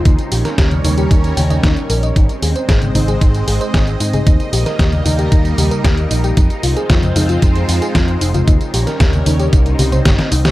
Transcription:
Already playing: D#4
0.05 D#2 G3 C#4 D#4 A#4 C#5, kick, closed hi-hat, tambourine
0.19 closed hi-hat, tambourine
0.32 A#1 G4, open hi-hat, tambourine
0.45 A#4, snare, closed hi-hat, tambourine
0.58 D#2 G4, kick, snare, closed hi-hat, tambourine
0.71 closed hi-hat, tambourine, high conga
0.84 D#2 D#4, open hi-hat, tambourine, high conga
0.98 G4, closed hi-hat, tambourine
1.11 D#2 D#4, kick, closed hi-hat, tambourine
1.24 closed hi-hat, tambourine
1.37 D#2 G5, open hi-hat, tambourine, high conga
1.50 D#5, closed hi-hat, tambourine, high conga
1.63 D#2 D#4, kick, snare, closed hi-hat, tambourine
1.77 closed hi-hat, tambourine
1.90 A#1 A#4, open hi-hat, tambourine
2.03 D#5, closed hi-hat, tambourine
2.16 G#1 G#3 C4 D#4 C5 D#5, kick, closed hi-hat, tambourine
2.29 closed hi-hat, tambourine
2.42 D#2 G#4, open hi-hat, tambourine
2.56 C5, closed hi-hat, tambourine
2.69 G#1 G#4, kick, snare, closed hi-hat, tambourine
2.82 closed hi-hat, tambourine, high conga
2.95 G#1 D#4, open hi-hat, tambourine, high conga
3.08 G#4, closed hi-hat, tambourine
3.21 G#1 D#4, kick, closed hi-hat, tambourine
3.35 closed hi-hat, tambourine
3.48 G#1 G#4, open hi-hat, tambourine
3.61 C5, closed hi-hat, tambourine
3.74 G#1 G#4, kick, snare, closed hi-hat, tambourine
3.87 closed hi-hat, tambourine
4.00 G#2 D#4, open hi-hat, tambourine
4.13 G#4, closed hi-hat, tambourine, high conga
4.26 D#2 G3 A#3 D#4 A#4, kick, closed hi-hat, tambourine
4.40 closed hi-hat, tambourine
4.53 A#1 G4, open hi-hat, tambourine
4.66 A#4, snare, closed hi-hat, tambourine
4.79 D#2 G4, kick, snare, closed hi-hat, tambourine
4.92 closed hi-hat, tambourine, high conga
5.05 D#2 D#4, open hi-hat, tambourine, high conga
5.19 G4, closed hi-hat, tambourine
5.32 D#2 D#4, kick, closed hi-hat, tambourine
5.45 closed hi-hat, tambourine
5.58 D#2 G4, open hi-hat, tambourine, high conga
5.71 A#4, closed hi-hat, tambourine
5.84 D#2 G4, kick, snare, closed hi-hat, tambourine
5.98 closed hi-hat, tambourine
6.11 A#1 D#4, open hi-hat, tambourine
6.24 G4, closed hi-hat, tambourine
6.37 F2 G#3 C4 D#4 F4 C5, kick, closed hi-hat, tambourine
6.50 closed hi-hat, tambourine
6.63 C2 F4, open hi-hat, tambourine
6.77 G#4, closed hi-hat, tambourine
6.90 F2 F4, kick, snare, closed hi-hat, tambourine
7.03 closed hi-hat, tambourine, high conga
7.16 F2 D#4, open hi-hat, tambourine, high conga
7.29 F4, closed hi-hat, tambourine
7.42 F2 D#4, kick, closed hi-hat, tambourine
7.56 closed hi-hat, tambourine
7.68 F2 F4, open hi-hat, tambourine
7.82 G#4, closed hi-hat, tambourine
7.95 F2 F4, kick, snare, closed hi-hat, tambourine
8.08 closed hi-hat, tambourine
8.21 F1 D#4, open hi-hat, tambourine
8.34 F4, closed hi-hat, tambourine, high conga
8.48 D#2 G3 C#4 D#4 A#4 C#5, kick, closed hi-hat, tambourine
8.61 closed hi-hat, tambourine
8.74 A#1 G4, open hi-hat, tambourine
8.87 A#4, snare, closed hi-hat, tambourine
9.00 D#2 G4, kick, snare, closed hi-hat, tambourine
9.13 closed hi-hat, tambourine, high conga
9.26 D#2 D#4, open hi-hat, tambourine, high conga
9.40 G4, closed hi-hat, tambourine
9.53 C2 C4 D#4 C5 D#5, kick, closed hi-hat, tambourine
9.66 closed hi-hat, tambourine
9.79 C2 G4, open hi-hat, tambourine, high conga
9.92 C5, closed hi-hat, tambourine, high conga
10.05 G1 G4, kick, snare, closed hi-hat, tambourine
10.19 snare, closed hi-hat, tambourine
10.32 C2 D#4, open hi-hat, tambourine
10.45 G4, snare, closed hi-hat, tambourine

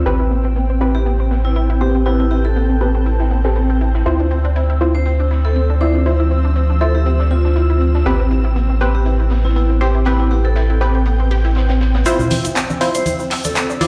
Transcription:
Already playing: C4 E6
0.06 A1 C4 E4 G4 B4 G5, closed hi-hat
0.20 E4, closed hi-hat
0.31 B3, closed hi-hat
0.42 C4 G5
0.56 B3, closed hi-hat
0.70 C4
0.80 C4 E4 G4 B4, closed hi-hat
0.95 E4 G4
1.06 B3, closed hi-hat
1.20 C4
1.31 B3, snare, open hi-hat
1.45 C4 E4, snare
1.55 E4, closed hi-hat
1.70 E4
1.81 B3 C4 G4 C5, closed hi-hat
1.95 C4
2.06 B3 C4 E4 G4 B4 A5, closed hi-hat
2.20 C4 E4, closed hi-hat
2.31 E4 G4, closed hi-hat
2.45 E4 A4
2.56 B3, closed hi-hat
2.70 C4
2.81 B3 C4 G4 B4, closed hi-hat
2.95 C4
3.06 E4, closed hi-hat
3.20 E4, snare
3.31 B3, closed hi-hat
3.44 C4 G4 A4, snare
3.55 B3, closed hi-hat
3.69 C4, closed hi-hat
3.81 E4, closed hi-hat
3.94 E4, snare
4.06 D2 C4 E4 F4 C5 E6, closed hi-hat
4.19 D4, closed hi-hat
4.31 C4, closed hi-hat
4.39 F3
4.45 D4 E6
4.56 E4, closed hi-hat
4.70 E4
4.81 C4 E4 F4 C5, closed hi-hat
4.95 D4 C5
5.06 C4, closed hi-hat
5.20 D4
5.31 E4, snare, open hi-hat
5.45 E4 A4, snare
5.56 C4 A4, closed hi-hat
5.70 D4
5.81 C4 E4 F4 C5 D5, closed hi-hat
5.95 D4
6.06 E4 F4 C5, closed hi-hat
6.20 E4, closed hi-hat
6.31 C4, closed hi-hat
6.45 D4
6.56 C4, closed hi-hat
6.70 D4
6.81 E4 F4 A4 C5 E5, closed hi-hat
6.95 E4 G4
7.06 C4, closed hi-hat
7.20 D4, snare
7.31 C4 F4, closed hi-hat
7.45 D4, snare
7.56 E4, closed hi-hat
7.70 E4, closed hi-hat
7.81 C4, closed hi-hat
7.95 D4, snare
8.06 A1 B3 C4 G4 B4 G5, closed hi-hat
8.20 C4, closed hi-hat
8.31 E4, closed hi-hat
8.45 E4
8.56 B3, closed hi-hat
8.70 C4
8.81 B3 C4 G4 B4, closed hi-hat
8.95 C4 G4
8.99 G5
9.06 E4, closed hi-hat
9.20 E4
9.30 B3, snare, open hi-hat
9.45 C4 E4, snare
9.56 B3 E4, closed hi-hat
9.70 C4
9.81 C4 E4 G4 C5, closed hi-hat
9.95 E4
10.05 B3 C4 E4 G4 B4, closed hi-hat
10.20 C4 E4, closed hi-hat
10.31 B3 G4, closed hi-hat
10.45 C4 A4
10.56 E4, snare, closed hi-hat
10.70 E4
10.81 B3 C4 G4 B4, closed hi-hat
10.95 C4
11.06 B3, closed hi-hat
11.20 C4
11.31 G4, snare, open hi-hat
11.44 E4, snare
11.55 C4, snare, closed hi-hat
11.69 C4, snare, closed hi-hat
11.81 C4, snare, closed hi-hat
11.94 B3, snare, closed hi-hat
12.06 D2 C4 E4 F4 C5 E6, closed hi-hat, shaker
12.19 D4, closed hi-hat, low conga, shaker
12.31 A1 E4, closed hi-hat, open hi-hat, high conga
12.40 F3
12.45 E4, closed hi-hat, shaker
12.56 C4, snare, clap, closed hi-hat, shaker
12.70 D4 E6, high conga, shaker
12.81 C4 E4 F4 C5, closed hi-hat, open hi-hat
12.95 C2 D4 C5, closed hi-hat, shaker
13.06 E4, closed hi-hat, high conga, shaker
13.19 E4, shaker
13.31 C4, snare, clap, open hi-hat
13.44 D2 D4 A4, snare, closed hi-hat, high conga, shaker
13.55 C4 A4, snare, clap, closed hi-hat, shaker
13.70 D4, shaker
13.81 E4 F4 C5 D5, closed hi-hat, open hi-hat, high conga

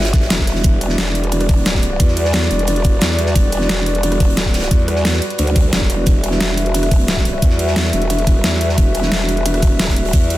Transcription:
Already playing: G1 G3 F#4 B4 E5
0.01 snare, closed hi-hat
0.05 snare
0.13 kick, snare, closed hi-hat
0.21 snare, open hi-hat
0.30 E1, snare, closed hi-hat
0.39 kick, snare
0.47 snare, closed hi-hat, open hi-hat
0.55 snare
0.64 E1 D5, kick, closed hi-hat
0.81 closed hi-hat
0.89 snare
0.98 snare, closed hi-hat
1.15 closed hi-hat
1.24 closed hi-hat
1.32 closed hi-hat
1.40 cross-stick, closed hi-hat
1.49 kick, closed hi-hat
1.57 closed hi-hat
1.61 D1
1.65 snare, closed hi-hat
1.74 kick, snare
1.82 closed hi-hat
2.00 E2, kick, closed hi-hat
2.08 snare
2.17 closed hi-hat
2.25 snare
2.33 snare, closed hi-hat
2.42 cross-stick, snare
2.51 E1, closed hi-hat
2.59 closed hi-hat
2.67 closed hi-hat
2.76 closed hi-hat
2.84 kick, closed hi-hat
3.01 E2, snare, closed hi-hat
3.19 closed hi-hat
3.26 snare
3.35 E1, kick, closed hi-hat
3.52 closed hi-hat
3.61 snare
3.69 snare, closed hi-hat
3.86 closed hi-hat
3.95 closed hi-hat
4.03 closed hi-hat
4.12 cross-stick, closed hi-hat
4.20 kick, closed hi-hat
4.30 D1, closed hi-hat
4.37 snare, closed hi-hat
4.46 kick, snare
4.54 snare, closed hi-hat
4.59 snare, closed hi-hat
4.62 snare, closed hi-hat
4.71 E2, kick, closed hi-hat
4.79 closed hi-hat
4.88 cross-stick, closed hi-hat
4.96 snare
5.05 snare, closed hi-hat
5.13 cross-stick, snare
5.22 closed hi-hat
5.30 closed hi-hat
5.38 D2, closed hi-hat
5.47 closed hi-hat
5.55 kick, closed hi-hat
5.73 E1, snare, closed hi-hat
5.81 kick
5.90 closed hi-hat
6.06 E1 E5, kick, closed hi-hat
6.23 closed hi-hat
6.32 snare
6.40 snare, closed hi-hat
6.58 closed hi-hat
6.66 closed hi-hat
6.74 closed hi-hat
6.83 cross-stick, closed hi-hat
6.91 kick, closed hi-hat
7.00 closed hi-hat
7.08 snare, closed hi-hat
7.17 kick, snare
7.25 closed hi-hat
7.42 E2, kick, closed hi-hat
7.50 snare
7.59 closed hi-hat
7.68 snare
7.76 snare, closed hi-hat
7.84 cross-stick, snare
7.93 E1, closed hi-hat
8.02 closed hi-hat
8.10 closed hi-hat
8.19 closed hi-hat
8.27 kick, closed hi-hat
8.44 E2, snare, closed hi-hat
8.61 closed hi-hat
8.69 snare
8.78 E1, kick, closed hi-hat
8.94 closed hi-hat
9.03 snare
9.12 snare, closed hi-hat
9.29 closed hi-hat
9.37 closed hi-hat
9.46 closed hi-hat
9.54 cross-stick, closed hi-hat
9.62 kick, closed hi-hat
9.72 D#1
9.79 snare, closed hi-hat
9.88 kick, closed hi-hat
9.96 D1, closed hi-hat
10.05 closed hi-hat
10.13 E2, kick, closed hi-hat
10.22 closed hi-hat
10.30 closed hi-hat

